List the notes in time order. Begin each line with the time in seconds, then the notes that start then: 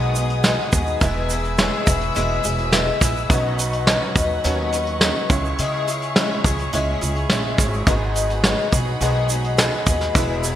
Already playing: G#1 B1 G#2 D#3 F#3 G#3 B3 D#4 F#4 G#4 B4 D#5 F#5 G#5 D#6
0.15 F#3 B3 D#4 G#4, closed hi-hat, shaker
0.30 closed hi-hat
0.44 F#3 G#3 B3 D#4 F#4 G#4 B4 D#5, snare, closed hi-hat, shaker
0.73 D#2 F#3 B3 D#4 G#4, kick, closed hi-hat, shaker
0.87 shaker
1.01 E1 E2 E3 G#3 B3 E4 G#4 B4 E5 E6, kick, closed hi-hat, shaker
1.30 B3 E4 G#4, closed hi-hat, shaker
1.44 closed hi-hat, shaker
1.58 G#3 B3 E4 G#4 B4 C#5, snare, closed hi-hat, shaker
1.86 E1 B3 E4 G#4, kick, closed hi-hat, shaker
2.01 closed hi-hat
2.15 E1 E3 G#3 B3 E4 G#4 B4 E5, closed hi-hat, shaker
2.44 E1 B3 E4 G#4, closed hi-hat, shaker
2.58 closed hi-hat
2.72 G#3 B3 E4 G#4 B4 E5, snare, closed hi-hat, shaker
3.01 A#1 B3 E4 G#4, kick, snare, closed hi-hat, shaker
3.17 shaker
3.29 B1 B2 D#3 F#3 C#4 D#4 B4 D#5 F#5 C#6, kick, closed hi-hat, shaker
3.59 F#3 C#4 D#4 B4, closed hi-hat, shaker
3.73 closed hi-hat, shaker
3.87 F#3 C#4 D#4 B4 D#5, snare, closed hi-hat, shaker
4.16 D#2 F#3 C#4 D#4 B4, kick, closed hi-hat, shaker
4.44 D#2 B2 D#3 F#3 C#4 D#4 B4 C#5, closed hi-hat, shaker
4.72 F#3 C#4 D#4 B4, closed hi-hat, shaker
4.87 closed hi-hat
5.01 F#3 C#4 D#4 B4 D#5, snare, closed hi-hat, shaker
5.30 C#2 C#3 G#3 C#4 E4 G#4 C#5 E5, kick, closed hi-hat, shaker
5.45 shaker
5.58 C#3 G#3 C#4 E4 G#4, closed hi-hat, shaker
5.87 C#4 E4 G#4, closed hi-hat, shaker
6.02 closed hi-hat, shaker
6.16 G#3 C#4 E4 G#4 C#5 D#5, snare, closed hi-hat, shaker
6.44 C#2 C#4 E4 G#4, kick, closed hi-hat, shaker
6.59 closed hi-hat, shaker
6.72 C#2 C#3 G#3 C#4 E4 G#4 C#5 E5, closed hi-hat, shaker
7.01 C#2 C#4 E4 G#4, closed hi-hat, shaker
7.15 closed hi-hat
7.29 A#1 G#3 C#4 E4 G#4 C#5 E5, snare, closed hi-hat, shaker
7.58 G#1 C#4 E4 G#4, kick, snare, closed hi-hat, shaker
7.73 shaker
7.87 G#1 G#2 D#3 F#3 G#3 B3 D#4 F#4 G#4 B4 D#5 F#5 B5, kick, closed hi-hat, shaker
8.14 F#3 B3 D#4 G#4, closed hi-hat, shaker
8.30 closed hi-hat, shaker
8.44 F#3 G#3 B3 D#4 F#4 G#4 B4 C#5, snare, closed hi-hat, shaker
8.72 B1 F#3 B3 D#4 G#4, kick, closed hi-hat, shaker
9.01 B1 G#2 D#3 F#3 G#3 B3 D#4 F#4 G#4 B4 D#5, closed hi-hat, shaker
9.29 F#3 B3 D#4 G#4, closed hi-hat, shaker
9.44 closed hi-hat
9.58 F#3 G#3 B3 D#4 F#4 G#4 B4 D#5, snare, closed hi-hat, shaker
9.87 D#2 F#3 B3 D#4 G#4, kick, closed hi-hat, shaker
10.01 snare, shaker
10.15 E1 E2 E3 G#3 B3 E4 G#4 B4 E5, kick, closed hi-hat, shaker
10.44 B3 E4 G#4, closed hi-hat, shaker